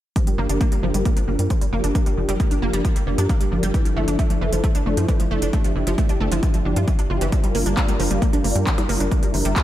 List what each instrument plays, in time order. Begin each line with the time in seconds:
0.16 supersaw synth F3 D4 G4 A#4, synth arpeggio sound F3, kick, closed hi-hat
0.27 supersaw synth F3 D4 G4 A#4, synth arpeggio sound G3, closed hi-hat
0.38 analog synth bass G1, synth arpeggio sound A#3
0.49 analog synth bass G1, supersaw synth F3 D4 G4 A#4, synth arpeggio sound D4, closed hi-hat
0.61 supersaw synth F3 D4 G4 A#4, synth arpeggio sound A#3, kick, closed hi-hat
0.72 synth arpeggio sound G3, closed hi-hat
0.83 analog synth bass G1, synth arpeggio sound F3, supersaw synth F3 D4 G4 A#4
0.94 analog synth bass G1, supersaw synth F3 D4 G4 A#4, synth arpeggio sound G3, closed hi-hat
1.05 synth arpeggio sound A#3, kick, closed hi-hat
1.17 synth arpeggio sound D4, closed hi-hat
1.28 analog synth bass G1, supersaw synth F3 D4 G4 A#4, synth arpeggio sound A#3
1.39 analog synth bass G2, synth arpeggio sound G3, closed hi-hat
1.50 synth arpeggio sound F3, kick, closed hi-hat
1.61 synth arpeggio sound G3, closed hi-hat
1.73 analog synth bass G1, supersaw synth F3 D4 G4 A#4, synth arpeggio sound A#3
1.84 analog synth bass G1, synth arpeggio sound D4, closed hi-hat
1.95 supersaw synth F3 D4 G4 A#4, synth arpeggio sound A#3, kick, closed hi-hat
2.06 supersaw synth F3 D4 G4 A#4, synth arpeggio sound G3, closed hi-hat
2.17 analog synth bass G1, synth arpeggio sound F3
2.29 analog synth bass G1, supersaw synth F3 D4 G4 A#4, synth arpeggio sound G3, closed hi-hat
2.40 supersaw synth F3 D4 G4 A#4, synth arpeggio sound A#3, kick, closed hi-hat
2.51 synth arpeggio sound D4, closed hi-hat
2.62 analog synth bass G1, supersaw synth F3 D4 G4 A#4, synth arpeggio sound A#3
2.73 analog synth bass G1, supersaw synth F3 D4 G4 A#4, synth arpeggio sound G3, closed hi-hat
2.85 synth arpeggio sound F3, kick, closed hi-hat
2.96 synth arpeggio sound G3, closed hi-hat
3.07 analog synth bass G1, supersaw synth F3 D4 G4 A#4, synth arpeggio sound A#3
3.18 analog synth bass G2, synth arpeggio sound D4, closed hi-hat
3.29 synth arpeggio sound A#3, kick, closed hi-hat
3.41 synth arpeggio sound G3, closed hi-hat
3.52 analog synth bass G1, supersaw synth F3 D4 G4 A#4, synth arpeggio sound F3
3.63 analog synth bass G1, synth arpeggio sound G3, closed hi-hat
3.74 synth arpeggio sound E3, supersaw synth F3 D4 E4 A4, kick, closed hi-hat
3.85 synth arpeggio sound F3, supersaw synth F3 D4 E4 A4, closed hi-hat
3.97 analog synth bass G1, synth arpeggio sound A3
4.08 analog synth bass G1, supersaw synth F3 D4 E4 A4, synth arpeggio sound D4, closed hi-hat
4.19 supersaw synth F3 D4 E4 A4, synth arpeggio sound A3, kick, closed hi-hat
4.30 synth arpeggio sound F3, closed hi-hat
4.41 analog synth bass G1, synth arpeggio sound E3, supersaw synth F3 D4 E4 A4
4.52 analog synth bass G1, synth arpeggio sound F3, supersaw synth F3 D4 E4 A4, closed hi-hat
4.64 synth arpeggio sound A3, kick, closed hi-hat
4.75 synth arpeggio sound D4, closed hi-hat
4.86 analog synth bass G1, supersaw synth F3 D4 E4 A4, synth arpeggio sound A3
4.97 analog synth bass G2, synth arpeggio sound F3, closed hi-hat
5.08 synth arpeggio sound E3, kick, closed hi-hat
5.20 synth arpeggio sound F3, closed hi-hat
5.31 analog synth bass G1, supersaw synth F3 D4 E4 A4, synth arpeggio sound A3
5.42 analog synth bass G1, synth arpeggio sound D4, closed hi-hat
5.53 supersaw synth F3 D4 E4 G4, synth arpeggio sound A3, kick, closed hi-hat
5.64 synth arpeggio sound F3, supersaw synth F3 D4 E4 G4, closed hi-hat
5.76 analog synth bass G1, synth arpeggio sound E3
5.87 analog synth bass G1, supersaw synth F3 D4 E4 G4, synth arpeggio sound F3, closed hi-hat
5.98 supersaw synth F3 D4 E4 G4, synth arpeggio sound A3, kick, closed hi-hat
6.09 synth arpeggio sound D4, closed hi-hat
6.20 analog synth bass G1, supersaw synth F3 D4 E4 G4, synth arpeggio sound A3
6.32 analog synth bass G1, supersaw synth F3 D4 E4 G4, synth arpeggio sound F3, closed hi-hat
6.43 synth arpeggio sound E3, kick, closed hi-hat
6.54 synth arpeggio sound F3, closed hi-hat
6.65 analog synth bass G1, supersaw synth F3 D4 E4 G4, synth arpeggio sound D4
6.76 analog synth bass G2, synth arpeggio sound F4, closed hi-hat
6.88 synth arpeggio sound E3, kick, closed hi-hat
6.99 synth arpeggio sound D4, closed hi-hat
7.10 analog synth bass G1, supersaw synth F3 D4 E4 G4, synth arpeggio sound F4
7.21 analog synth bass G1, synth arpeggio sound E3, closed hi-hat
7.32 synth arpeggio sound F3, supersaw synth G3 D4 F4 A#4, kick, closed hi-hat
7.44 synth arpeggio sound G3, supersaw synth G3 D4 F4 A#4, closed hi-hat
7.55 analog synth bass G1, synth arpeggio sound A#3, open hi-hat
7.66 analog synth bass G1, supersaw synth G3 D4 F4 A#4, synth arpeggio sound D4, closed hi-hat
7.77 supersaw synth G3 D4 F4 A#4, synth arpeggio sound A#3, kick, clap, closed hi-hat
7.88 synth arpeggio sound G3, closed hi-hat
8.00 analog synth bass G1, synth arpeggio sound F3, supersaw synth G3 D4 F4 A#4, open hi-hat
8.11 analog synth bass G1, synth arpeggio sound G3, supersaw synth G3 D4 F4 A#4, closed hi-hat
8.22 synth arpeggio sound A#3, kick, closed hi-hat
8.33 synth arpeggio sound D4, closed hi-hat
8.44 analog synth bass G1, supersaw synth G3 D4 F4 A#4, synth arpeggio sound A#3, open hi-hat
8.56 analog synth bass G2, synth arpeggio sound G3, closed hi-hat
8.67 synth arpeggio sound F3, kick, clap, closed hi-hat
8.78 synth arpeggio sound G3, closed hi-hat, percussion blips
8.89 analog synth bass G1, supersaw synth G3 D4 F4 A#4, synth arpeggio sound A#3, open hi-hat
9.00 analog synth bass G1, synth arpeggio sound D4, closed hi-hat
9.11 supersaw synth G3 D4 E4 A#4, synth arpeggio sound A#3, kick, closed hi-hat
9.23 supersaw synth G3 D4 E4 A#4, synth arpeggio sound G3, closed hi-hat
9.34 analog synth bass G1, synth arpeggio sound F3, open hi-hat
9.45 analog synth bass G1, supersaw synth G3 D4 E4 A#4, synth arpeggio sound G3, closed hi-hat
9.56 supersaw synth G3 D4 E4 A#4, synth arpeggio sound A#3, kick, clap, closed hi-hat